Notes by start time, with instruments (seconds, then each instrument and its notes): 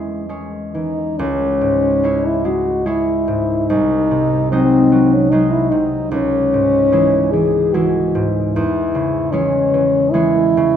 Already playing: harp E2 E3 G#3 C#4, french horn E4
0.29 harp G#3 C#4
0.74 harp E3, french horn D#4
1.18 harp C#2, french horn C#4
1.61 harp G#2
2.03 harp G#3 C#4 E4
2.25 french horn E4
2.45 harp G#3, french horn F#4
2.86 harp G#3 C#4 E4, french horn E4
3.28 harp G#2
3.69 harp C2, french horn D#4
4.11 harp C3
4.51 harp F#3 G#3 D#4, french horn C4
4.92 harp F#3
5.13 french horn C#4
5.30 harp F#3 G#3 D#4, french horn D#4
5.51 french horn E4
5.70 harp C3, french horn D#4
6.11 harp C#2, french horn C#4
6.54 harp G#2
6.92 harp E3 G#3 E4
7.32 harp E3, french horn G#4
7.74 harp E3 G#3 E4, french horn F#4
8.15 harp G#2
8.53 harp E2, french horn E4
8.95 harp C#3
9.32 harp E3 G#3 C#4, french horn C#4
9.74 harp E3
10.11 harp E3 G#3 C#4, french horn E4
10.57 harp C#3